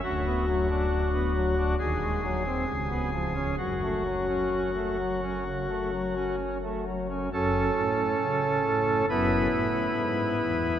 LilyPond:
<<
  \new Staff \with { instrumentName = "Pipe organ" } { \time 4/4 \key fis \minor \tempo 4 = 67 fis'2 gis'2 | fis'2. r4 | <cis' a'>2 <b e' b'>2 | }
  \new Staff \with { instrumentName = "Pipe organ" } { \clef bass \time 4/4 \key fis \minor << { d,16 b16 fis16 d'8 b16 fis16 d'16 dis,16 gis16 fis16 bis16 cis,16 b16 eis16 cis'16 | fis,16 a16 fis16 cis'8 a16 fis16 cis'16 cis16 a16 fis16 cis'8 a16 fis16 cis'16 | fis,8 a,8 cis8 a,8 fis,8 a,8 gis,8 e,8 | } \\ { d,,2 dis,,4 cis,,4 | fis,,1 | fis,,8 r4. fis,,8 r4. | } >> }
>>